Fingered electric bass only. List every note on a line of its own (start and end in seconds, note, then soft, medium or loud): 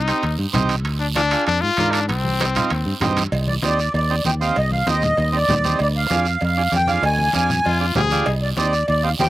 0.00 0.11 C2 medium
0.23 0.36 D#2 medium
0.39 0.45 G2 medium
0.55 0.85 C2 medium
0.85 1.34 D2 medium
1.47 1.60 F2 medium
1.63 1.69 G#2 medium
1.78 2.11 G#2 medium
2.09 2.59 C2 medium
2.71 2.83 D#2 medium
2.86 2.92 G2 medium
3.00 3.26 G2 medium
3.32 3.57 C2 loud
3.63 3.88 D#2 medium
3.94 4.19 D#2 loud
4.25 4.50 D#2 medium
4.57 4.82 C2 loud
4.88 5.12 D#2 medium
5.18 5.43 D#2 loud
5.50 5.74 D#2 medium
5.80 6.05 D2 loud
6.10 6.35 F2 medium
6.42 6.67 F2 loud
6.73 6.98 F2 medium
7.02 7.28 D2 loud
7.35 7.59 F2 medium
7.66 7.91 F2 loud
7.96 8.21 D2 medium
8.27 8.52 C2 loud
8.58 8.82 D#2 medium
8.89 9.13 D#2 loud
9.20 9.29 D#2 medium